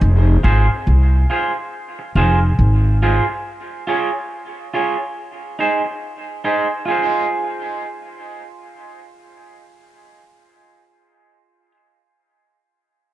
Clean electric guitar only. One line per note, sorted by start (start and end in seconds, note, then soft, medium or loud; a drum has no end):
0.43 0.66 F4 medium
0.43 0.66 G#4 loud
0.43 0.67 C5 loud
1.30 1.52 F4 medium
1.30 1.52 G#4 medium
1.30 1.53 C5 medium
1.99 muted clean electric guitar stroke soft
2.16 2.38 F4 medium
2.16 2.39 G#4 medium
2.16 2.39 C5 medium
3.02 3.24 F4 medium
3.02 3.24 G#4 medium
3.02 3.25 C5 medium
3.28 muted clean electric guitar stroke soft
3.87 4.09 F4 medium
3.87 4.10 G#4 loud
3.87 4.10 C#5 medium
4.74 4.96 F4 medium
4.74 4.96 G#4 medium
4.74 4.96 C#5 medium
5.59 5.81 D#4 medium
5.59 5.82 G#4 medium
5.59 5.82 C5 medium
5.85 muted clean electric guitar stroke soft
6.44 6.67 D#4 medium
6.44 6.67 G#4 medium
6.44 6.67 C5 medium
6.86 11.71 F4 medium
6.86 11.74 G#4 medium
6.91 11.77 C5 medium